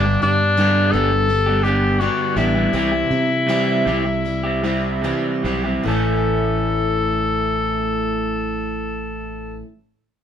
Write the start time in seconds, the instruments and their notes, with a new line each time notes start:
Already playing: fingered electric bass G1, clean electric guitar G2 D3, steel-string acoustic guitar G3 B3 D4 G4, tenor saxophone D4
0.06 muted clean electric guitar stroke
0.22 fingered electric bass G2, steel-string acoustic guitar G3 B3 D4 G4, tenor saxophone D4
0.58 clean electric guitar G2 D3 G3 B3 D4 G4
0.92 fingered electric bass G1, clean electric guitar G3 B3 D4, tenor saxophone A4
0.96 clean electric guitar G4
1.12 muted clean electric guitar stroke
1.28 steel-string acoustic guitar G3 B3 D4 G4
1.46 clean electric guitar G3 B3 D4 G4
1.63 clean electric guitar G3 B3, tenor saxophone G4, steel-string acoustic guitar G4
1.67 clean electric guitar D4 G4
2.00 clean electric guitar G2 D3 G3 B3 D4 G4, tenor saxophone F#4
2.36 fingered electric bass A1, clean electric guitar G3 B3 D4 G4, tenor saxophone E4
2.55 clean electric guitar G3 B3 D4 G4
2.73 fingered electric bass C2, clean electric guitar C3 G3 C4 E4 G4, steel-string acoustic guitar E3
2.92 muted clean electric guitar stroke
3.11 fingered electric bass C3, steel-string acoustic guitar G3 C4 E4
3.47 clean electric guitar C3 G3 C4 E4 G4, steel-string acoustic guitar E3
3.85 fingered electric bass C2, clean electric guitar G3 C4 E4 G4
4.06 muted clean electric guitar stroke
4.25 steel-string acoustic guitar E3 G3 C4 E4
4.43 clean electric guitar C4 E4 G4
4.62 clean electric guitar G3 C4 E4 G4
5.01 clean electric guitar C3 G3 C4 E4 G4, steel-string acoustic guitar E3
5.43 fingered electric bass B1, clean electric guitar G3 C4 E4 G4
5.64 clean electric guitar C4 E4 G4
5.84 fingered electric bass A1, clean electric guitar A2 E3 A3 C#4, tenor saxophone A4
5.88 steel-string acoustic guitar E4, clean electric guitar A4